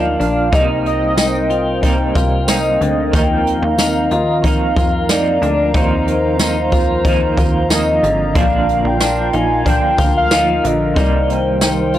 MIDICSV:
0, 0, Header, 1, 7, 480
1, 0, Start_track
1, 0, Tempo, 652174
1, 388, Time_signature, 4, 2, 24, 8
1, 8822, End_track
2, 0, Start_track
2, 0, Title_t, "Soft synth lead"
2, 0, Program_c, 0, 80
2, 0, Note_on_c, 0, 77, 109
2, 155, Note_off_c, 0, 77, 0
2, 162, Note_on_c, 0, 77, 98
2, 402, Note_on_c, 0, 75, 110
2, 413, Note_off_c, 0, 77, 0
2, 635, Note_off_c, 0, 75, 0
2, 641, Note_on_c, 0, 75, 94
2, 1565, Note_off_c, 0, 75, 0
2, 1839, Note_on_c, 0, 75, 97
2, 2317, Note_on_c, 0, 79, 109
2, 2328, Note_off_c, 0, 75, 0
2, 2681, Note_on_c, 0, 77, 90
2, 2692, Note_off_c, 0, 79, 0
2, 3042, Note_on_c, 0, 75, 85
2, 3053, Note_off_c, 0, 77, 0
2, 3281, Note_on_c, 0, 77, 106
2, 3292, Note_off_c, 0, 75, 0
2, 3757, Note_on_c, 0, 74, 105
2, 3768, Note_off_c, 0, 77, 0
2, 4232, Note_off_c, 0, 74, 0
2, 4243, Note_on_c, 0, 72, 112
2, 5646, Note_off_c, 0, 72, 0
2, 5682, Note_on_c, 0, 75, 109
2, 6160, Note_on_c, 0, 77, 116
2, 6171, Note_off_c, 0, 75, 0
2, 6528, Note_on_c, 0, 79, 97
2, 6539, Note_off_c, 0, 77, 0
2, 6888, Note_on_c, 0, 80, 112
2, 6899, Note_off_c, 0, 79, 0
2, 7118, Note_off_c, 0, 80, 0
2, 7128, Note_on_c, 0, 79, 126
2, 7453, Note_off_c, 0, 79, 0
2, 7488, Note_on_c, 0, 77, 112
2, 7849, Note_on_c, 0, 75, 91
2, 7860, Note_off_c, 0, 77, 0
2, 8086, Note_on_c, 0, 74, 104
2, 8097, Note_off_c, 0, 75, 0
2, 8321, Note_on_c, 0, 72, 93
2, 8332, Note_off_c, 0, 74, 0
2, 8822, Note_off_c, 0, 72, 0
2, 8822, End_track
3, 0, Start_track
3, 0, Title_t, "Analog synth pad"
3, 0, Program_c, 1, 89
3, 0, Note_on_c, 1, 65, 68
3, 0, Note_on_c, 1, 70, 78
3, 0, Note_on_c, 1, 74, 75
3, 0, Note_on_c, 1, 77, 86
3, 358, Note_off_c, 1, 65, 0
3, 358, Note_off_c, 1, 77, 0
3, 368, Note_off_c, 1, 74, 0
3, 389, Note_on_c, 1, 60, 79
3, 389, Note_on_c, 1, 72, 70
3, 389, Note_on_c, 1, 79, 95
3, 2289, Note_off_c, 1, 72, 0
3, 2289, Note_off_c, 1, 79, 0
3, 2309, Note_on_c, 1, 82, 83
3, 2310, Note_on_c, 1, 77, 75
3, 6117, Note_off_c, 1, 70, 0
3, 6119, Note_off_c, 1, 60, 0
3, 6120, Note_off_c, 1, 77, 0
3, 6146, Note_on_c, 1, 70, 71
3, 6146, Note_on_c, 1, 77, 75
3, 6147, Note_on_c, 1, 65, 77
3, 8039, Note_off_c, 1, 82, 0
3, 8047, Note_off_c, 1, 77, 0
3, 8048, Note_off_c, 1, 65, 0
3, 8066, Note_on_c, 1, 72, 73
3, 8068, Note_on_c, 1, 51, 77
3, 8070, Note_on_c, 1, 79, 81
3, 8822, Note_off_c, 1, 51, 0
3, 8822, Note_off_c, 1, 70, 0
3, 8822, Note_off_c, 1, 72, 0
3, 8822, Note_off_c, 1, 79, 0
3, 8822, End_track
4, 0, Start_track
4, 0, Title_t, "Clean electric guitar"
4, 0, Program_c, 2, 27
4, 0, Note_on_c, 2, 63, 77
4, 142, Note_off_c, 2, 63, 0
4, 145, Note_on_c, 2, 62, 76
4, 382, Note_off_c, 2, 62, 0
4, 385, Note_on_c, 2, 63, 90
4, 856, Note_off_c, 2, 63, 0
4, 864, Note_on_c, 2, 63, 80
4, 1104, Note_on_c, 2, 65, 68
4, 1106, Note_off_c, 2, 63, 0
4, 1346, Note_off_c, 2, 65, 0
4, 1346, Note_on_c, 2, 63, 75
4, 1587, Note_off_c, 2, 63, 0
4, 1587, Note_on_c, 2, 65, 69
4, 1827, Note_off_c, 2, 65, 0
4, 1829, Note_on_c, 2, 63, 82
4, 2068, Note_off_c, 2, 63, 0
4, 2069, Note_on_c, 2, 50, 68
4, 2308, Note_off_c, 2, 50, 0
4, 2308, Note_on_c, 2, 63, 86
4, 2779, Note_off_c, 2, 63, 0
4, 2787, Note_on_c, 2, 63, 83
4, 3027, Note_on_c, 2, 65, 73
4, 3028, Note_off_c, 2, 63, 0
4, 3267, Note_off_c, 2, 65, 0
4, 3268, Note_on_c, 2, 63, 70
4, 3507, Note_on_c, 2, 65, 66
4, 3508, Note_off_c, 2, 63, 0
4, 3747, Note_off_c, 2, 65, 0
4, 3748, Note_on_c, 2, 63, 87
4, 3985, Note_off_c, 2, 63, 0
4, 3988, Note_on_c, 2, 62, 77
4, 4226, Note_off_c, 2, 62, 0
4, 4229, Note_on_c, 2, 63, 94
4, 4699, Note_off_c, 2, 63, 0
4, 4708, Note_on_c, 2, 63, 89
4, 4948, Note_off_c, 2, 63, 0
4, 4948, Note_on_c, 2, 65, 74
4, 5187, Note_on_c, 2, 63, 72
4, 5188, Note_off_c, 2, 65, 0
4, 5427, Note_off_c, 2, 63, 0
4, 5429, Note_on_c, 2, 65, 59
4, 5668, Note_off_c, 2, 65, 0
4, 5670, Note_on_c, 2, 63, 85
4, 5908, Note_on_c, 2, 50, 68
4, 5909, Note_off_c, 2, 63, 0
4, 6148, Note_off_c, 2, 50, 0
4, 6148, Note_on_c, 2, 62, 87
4, 6620, Note_off_c, 2, 62, 0
4, 6629, Note_on_c, 2, 62, 79
4, 6867, Note_off_c, 2, 62, 0
4, 6870, Note_on_c, 2, 63, 69
4, 7105, Note_off_c, 2, 63, 0
4, 7108, Note_on_c, 2, 62, 79
4, 7348, Note_off_c, 2, 62, 0
4, 7350, Note_on_c, 2, 65, 67
4, 7589, Note_off_c, 2, 65, 0
4, 7590, Note_on_c, 2, 63, 79
4, 7829, Note_off_c, 2, 63, 0
4, 7829, Note_on_c, 2, 50, 80
4, 8067, Note_on_c, 2, 63, 82
4, 8068, Note_off_c, 2, 50, 0
4, 8540, Note_off_c, 2, 63, 0
4, 8549, Note_on_c, 2, 63, 80
4, 8788, Note_off_c, 2, 63, 0
4, 8791, Note_on_c, 2, 65, 73
4, 8822, Note_off_c, 2, 65, 0
4, 8822, End_track
5, 0, Start_track
5, 0, Title_t, "Clean electric guitar"
5, 0, Program_c, 3, 27
5, 0, Note_on_c, 3, 53, 73
5, 0, Note_on_c, 3, 58, 64
5, 0, Note_on_c, 3, 62, 72
5, 370, Note_on_c, 3, 48, 68
5, 387, Note_off_c, 3, 53, 0
5, 390, Note_on_c, 3, 55, 65
5, 398, Note_off_c, 3, 62, 0
5, 403, Note_off_c, 3, 58, 0
5, 406, Note_on_c, 3, 58, 71
5, 420, Note_on_c, 3, 63, 78
5, 1327, Note_off_c, 3, 48, 0
5, 1335, Note_on_c, 3, 48, 58
5, 1341, Note_off_c, 3, 55, 0
5, 1350, Note_on_c, 3, 55, 62
5, 1355, Note_off_c, 3, 58, 0
5, 1358, Note_on_c, 3, 58, 63
5, 1367, Note_off_c, 3, 63, 0
5, 1370, Note_on_c, 3, 63, 70
5, 1808, Note_off_c, 3, 48, 0
5, 1817, Note_on_c, 3, 48, 62
5, 1821, Note_off_c, 3, 55, 0
5, 1829, Note_on_c, 3, 55, 63
5, 1837, Note_off_c, 3, 58, 0
5, 1840, Note_on_c, 3, 58, 64
5, 2289, Note_off_c, 3, 48, 0
5, 2292, Note_on_c, 3, 51, 62
5, 2309, Note_off_c, 3, 55, 0
5, 2312, Note_on_c, 3, 53, 66
5, 2326, Note_off_c, 3, 58, 0
5, 2328, Note_on_c, 3, 58, 64
5, 2334, Note_off_c, 3, 63, 0
5, 2342, Note_on_c, 3, 63, 66
5, 3244, Note_off_c, 3, 51, 0
5, 3253, Note_on_c, 3, 51, 58
5, 3264, Note_off_c, 3, 53, 0
5, 3267, Note_on_c, 3, 53, 64
5, 3273, Note_off_c, 3, 58, 0
5, 3276, Note_on_c, 3, 58, 54
5, 3277, Note_off_c, 3, 63, 0
5, 3286, Note_on_c, 3, 63, 67
5, 3740, Note_off_c, 3, 51, 0
5, 3746, Note_off_c, 3, 53, 0
5, 3749, Note_on_c, 3, 53, 66
5, 3757, Note_off_c, 3, 58, 0
5, 3757, Note_off_c, 3, 63, 0
5, 3759, Note_on_c, 3, 58, 61
5, 3770, Note_on_c, 3, 63, 60
5, 4222, Note_on_c, 3, 51, 71
5, 4228, Note_off_c, 3, 53, 0
5, 4231, Note_on_c, 3, 53, 66
5, 4236, Note_off_c, 3, 58, 0
5, 4236, Note_off_c, 3, 63, 0
5, 4239, Note_on_c, 3, 58, 73
5, 4244, Note_on_c, 3, 63, 79
5, 4688, Note_off_c, 3, 51, 0
5, 4697, Note_on_c, 3, 51, 54
5, 4708, Note_off_c, 3, 53, 0
5, 4710, Note_on_c, 3, 53, 58
5, 4716, Note_off_c, 3, 63, 0
5, 4718, Note_off_c, 3, 58, 0
5, 4721, Note_on_c, 3, 58, 52
5, 4731, Note_on_c, 3, 63, 56
5, 5170, Note_off_c, 3, 51, 0
5, 5179, Note_on_c, 3, 51, 67
5, 5189, Note_off_c, 3, 53, 0
5, 5192, Note_on_c, 3, 53, 71
5, 5199, Note_off_c, 3, 58, 0
5, 5199, Note_off_c, 3, 63, 0
5, 5202, Note_on_c, 3, 58, 74
5, 5213, Note_on_c, 3, 63, 74
5, 5648, Note_off_c, 3, 51, 0
5, 5657, Note_on_c, 3, 51, 61
5, 5666, Note_off_c, 3, 53, 0
5, 5669, Note_on_c, 3, 53, 63
5, 5676, Note_off_c, 3, 58, 0
5, 5679, Note_on_c, 3, 58, 69
5, 5680, Note_off_c, 3, 63, 0
5, 6138, Note_on_c, 3, 46, 65
5, 6141, Note_off_c, 3, 51, 0
5, 6144, Note_on_c, 3, 50, 74
5, 6147, Note_off_c, 3, 53, 0
5, 6150, Note_on_c, 3, 53, 69
5, 6151, Note_off_c, 3, 58, 0
5, 6154, Note_on_c, 3, 58, 80
5, 6159, Note_on_c, 3, 62, 81
5, 6619, Note_off_c, 3, 53, 0
5, 6623, Note_off_c, 3, 46, 0
5, 6626, Note_off_c, 3, 50, 0
5, 6628, Note_on_c, 3, 53, 61
5, 6633, Note_off_c, 3, 62, 0
5, 6635, Note_off_c, 3, 58, 0
5, 6638, Note_on_c, 3, 58, 48
5, 6650, Note_on_c, 3, 62, 56
5, 7098, Note_on_c, 3, 50, 65
5, 7101, Note_off_c, 3, 53, 0
5, 7110, Note_on_c, 3, 53, 63
5, 7118, Note_off_c, 3, 58, 0
5, 7119, Note_off_c, 3, 62, 0
5, 7121, Note_on_c, 3, 58, 58
5, 7131, Note_on_c, 3, 62, 65
5, 7581, Note_off_c, 3, 53, 0
5, 7583, Note_off_c, 3, 50, 0
5, 7590, Note_on_c, 3, 53, 72
5, 7599, Note_off_c, 3, 58, 0
5, 7599, Note_off_c, 3, 62, 0
5, 7602, Note_on_c, 3, 58, 64
5, 8053, Note_on_c, 3, 48, 68
5, 8068, Note_off_c, 3, 53, 0
5, 8070, Note_on_c, 3, 55, 81
5, 8075, Note_off_c, 3, 58, 0
5, 8089, Note_on_c, 3, 58, 71
5, 8101, Note_on_c, 3, 63, 69
5, 8822, Note_off_c, 3, 48, 0
5, 8822, Note_off_c, 3, 55, 0
5, 8822, Note_off_c, 3, 58, 0
5, 8822, Note_off_c, 3, 63, 0
5, 8822, End_track
6, 0, Start_track
6, 0, Title_t, "Analog synth bass"
6, 0, Program_c, 4, 38
6, 0, Note_on_c, 4, 38, 89
6, 123, Note_off_c, 4, 38, 0
6, 149, Note_on_c, 4, 34, 94
6, 376, Note_off_c, 4, 34, 0
6, 388, Note_on_c, 4, 36, 108
6, 1558, Note_off_c, 4, 36, 0
6, 1587, Note_on_c, 4, 36, 86
6, 2043, Note_off_c, 4, 36, 0
6, 2067, Note_on_c, 4, 38, 87
6, 2295, Note_off_c, 4, 38, 0
6, 2307, Note_on_c, 4, 39, 102
6, 2649, Note_off_c, 4, 39, 0
6, 2666, Note_on_c, 4, 39, 110
6, 3009, Note_off_c, 4, 39, 0
6, 3028, Note_on_c, 4, 39, 92
6, 3370, Note_off_c, 4, 39, 0
6, 3507, Note_on_c, 4, 41, 92
6, 3964, Note_off_c, 4, 41, 0
6, 3988, Note_on_c, 4, 38, 101
6, 4216, Note_off_c, 4, 38, 0
6, 4228, Note_on_c, 4, 39, 110
6, 5398, Note_off_c, 4, 39, 0
6, 5428, Note_on_c, 4, 39, 97
6, 5884, Note_off_c, 4, 39, 0
6, 5911, Note_on_c, 4, 32, 102
6, 6138, Note_off_c, 4, 32, 0
6, 6148, Note_on_c, 4, 34, 97
6, 6490, Note_off_c, 4, 34, 0
6, 6511, Note_on_c, 4, 34, 100
6, 6851, Note_off_c, 4, 34, 0
6, 6874, Note_on_c, 4, 34, 93
6, 7213, Note_off_c, 4, 34, 0
6, 7349, Note_on_c, 4, 38, 79
6, 7805, Note_off_c, 4, 38, 0
6, 7834, Note_on_c, 4, 34, 103
6, 8059, Note_off_c, 4, 34, 0
6, 8070, Note_on_c, 4, 36, 112
6, 8822, Note_off_c, 4, 36, 0
6, 8822, End_track
7, 0, Start_track
7, 0, Title_t, "Drums"
7, 151, Note_on_c, 9, 42, 56
7, 225, Note_off_c, 9, 42, 0
7, 387, Note_on_c, 9, 42, 59
7, 388, Note_on_c, 9, 36, 111
7, 461, Note_off_c, 9, 36, 0
7, 461, Note_off_c, 9, 42, 0
7, 633, Note_on_c, 9, 42, 45
7, 706, Note_off_c, 9, 42, 0
7, 864, Note_on_c, 9, 42, 72
7, 865, Note_on_c, 9, 38, 113
7, 865, Note_on_c, 9, 54, 55
7, 937, Note_off_c, 9, 42, 0
7, 938, Note_off_c, 9, 38, 0
7, 938, Note_off_c, 9, 54, 0
7, 1104, Note_on_c, 9, 42, 42
7, 1178, Note_off_c, 9, 42, 0
7, 1346, Note_on_c, 9, 36, 81
7, 1347, Note_on_c, 9, 42, 67
7, 1420, Note_off_c, 9, 36, 0
7, 1420, Note_off_c, 9, 42, 0
7, 1586, Note_on_c, 9, 36, 100
7, 1588, Note_on_c, 9, 42, 58
7, 1659, Note_off_c, 9, 36, 0
7, 1662, Note_off_c, 9, 42, 0
7, 1825, Note_on_c, 9, 54, 68
7, 1826, Note_on_c, 9, 38, 112
7, 1828, Note_on_c, 9, 42, 63
7, 1899, Note_off_c, 9, 38, 0
7, 1899, Note_off_c, 9, 54, 0
7, 1902, Note_off_c, 9, 42, 0
7, 2071, Note_on_c, 9, 42, 56
7, 2145, Note_off_c, 9, 42, 0
7, 2305, Note_on_c, 9, 42, 64
7, 2307, Note_on_c, 9, 36, 102
7, 2379, Note_off_c, 9, 42, 0
7, 2380, Note_off_c, 9, 36, 0
7, 2553, Note_on_c, 9, 42, 50
7, 2627, Note_off_c, 9, 42, 0
7, 2784, Note_on_c, 9, 42, 64
7, 2785, Note_on_c, 9, 38, 98
7, 2786, Note_on_c, 9, 54, 65
7, 2858, Note_off_c, 9, 42, 0
7, 2859, Note_off_c, 9, 38, 0
7, 2859, Note_off_c, 9, 54, 0
7, 3023, Note_on_c, 9, 42, 45
7, 3097, Note_off_c, 9, 42, 0
7, 3267, Note_on_c, 9, 36, 83
7, 3269, Note_on_c, 9, 42, 67
7, 3341, Note_off_c, 9, 36, 0
7, 3343, Note_off_c, 9, 42, 0
7, 3507, Note_on_c, 9, 36, 91
7, 3509, Note_on_c, 9, 42, 54
7, 3580, Note_off_c, 9, 36, 0
7, 3583, Note_off_c, 9, 42, 0
7, 3748, Note_on_c, 9, 38, 100
7, 3748, Note_on_c, 9, 54, 65
7, 3751, Note_on_c, 9, 42, 60
7, 3821, Note_off_c, 9, 54, 0
7, 3822, Note_off_c, 9, 38, 0
7, 3825, Note_off_c, 9, 42, 0
7, 3993, Note_on_c, 9, 42, 58
7, 4067, Note_off_c, 9, 42, 0
7, 4227, Note_on_c, 9, 36, 108
7, 4227, Note_on_c, 9, 42, 61
7, 4301, Note_off_c, 9, 36, 0
7, 4301, Note_off_c, 9, 42, 0
7, 4471, Note_on_c, 9, 42, 49
7, 4545, Note_off_c, 9, 42, 0
7, 4705, Note_on_c, 9, 42, 72
7, 4706, Note_on_c, 9, 38, 93
7, 4706, Note_on_c, 9, 54, 51
7, 4778, Note_off_c, 9, 42, 0
7, 4779, Note_off_c, 9, 38, 0
7, 4779, Note_off_c, 9, 54, 0
7, 4943, Note_on_c, 9, 42, 45
7, 4948, Note_on_c, 9, 36, 82
7, 5017, Note_off_c, 9, 42, 0
7, 5021, Note_off_c, 9, 36, 0
7, 5187, Note_on_c, 9, 36, 89
7, 5187, Note_on_c, 9, 42, 67
7, 5261, Note_off_c, 9, 36, 0
7, 5261, Note_off_c, 9, 42, 0
7, 5428, Note_on_c, 9, 36, 95
7, 5430, Note_on_c, 9, 42, 57
7, 5501, Note_off_c, 9, 36, 0
7, 5504, Note_off_c, 9, 42, 0
7, 5670, Note_on_c, 9, 54, 61
7, 5671, Note_on_c, 9, 38, 116
7, 5673, Note_on_c, 9, 42, 58
7, 5743, Note_off_c, 9, 54, 0
7, 5744, Note_off_c, 9, 38, 0
7, 5747, Note_off_c, 9, 42, 0
7, 5914, Note_on_c, 9, 42, 57
7, 5987, Note_off_c, 9, 42, 0
7, 6149, Note_on_c, 9, 36, 114
7, 6150, Note_on_c, 9, 42, 64
7, 6223, Note_off_c, 9, 36, 0
7, 6224, Note_off_c, 9, 42, 0
7, 6396, Note_on_c, 9, 42, 44
7, 6469, Note_off_c, 9, 42, 0
7, 6627, Note_on_c, 9, 42, 77
7, 6628, Note_on_c, 9, 38, 107
7, 6628, Note_on_c, 9, 54, 57
7, 6700, Note_off_c, 9, 42, 0
7, 6701, Note_off_c, 9, 38, 0
7, 6701, Note_off_c, 9, 54, 0
7, 6868, Note_on_c, 9, 42, 45
7, 6941, Note_off_c, 9, 42, 0
7, 7109, Note_on_c, 9, 36, 78
7, 7111, Note_on_c, 9, 42, 70
7, 7182, Note_off_c, 9, 36, 0
7, 7185, Note_off_c, 9, 42, 0
7, 7349, Note_on_c, 9, 36, 98
7, 7352, Note_on_c, 9, 42, 56
7, 7422, Note_off_c, 9, 36, 0
7, 7426, Note_off_c, 9, 42, 0
7, 7588, Note_on_c, 9, 54, 61
7, 7589, Note_on_c, 9, 38, 108
7, 7592, Note_on_c, 9, 42, 66
7, 7662, Note_off_c, 9, 54, 0
7, 7663, Note_off_c, 9, 38, 0
7, 7665, Note_off_c, 9, 42, 0
7, 7834, Note_on_c, 9, 42, 62
7, 7908, Note_off_c, 9, 42, 0
7, 8069, Note_on_c, 9, 36, 106
7, 8071, Note_on_c, 9, 42, 59
7, 8143, Note_off_c, 9, 36, 0
7, 8145, Note_off_c, 9, 42, 0
7, 8315, Note_on_c, 9, 42, 43
7, 8388, Note_off_c, 9, 42, 0
7, 8546, Note_on_c, 9, 42, 72
7, 8547, Note_on_c, 9, 38, 102
7, 8547, Note_on_c, 9, 54, 57
7, 8620, Note_off_c, 9, 42, 0
7, 8621, Note_off_c, 9, 38, 0
7, 8621, Note_off_c, 9, 54, 0
7, 8785, Note_on_c, 9, 42, 48
7, 8822, Note_off_c, 9, 42, 0
7, 8822, End_track
0, 0, End_of_file